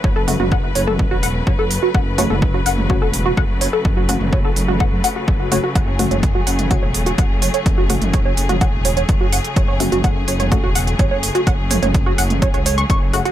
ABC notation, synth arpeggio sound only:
X:1
M:4/4
L:1/16
Q:1/4=126
K:F#m
V:1 name="Synth arpeggio sound"
c A z F f z c A z F f z c A z F | f z c A z F f z c A z F f z c A | z F f z c A z F f z f F z F c F | f z c c z F f z c c z F f z c c |
z F f z c c z F f z c c z F f z | c c z F f z c c z F f z c c z F | f z c c z F f z c c c c' c' z f F |]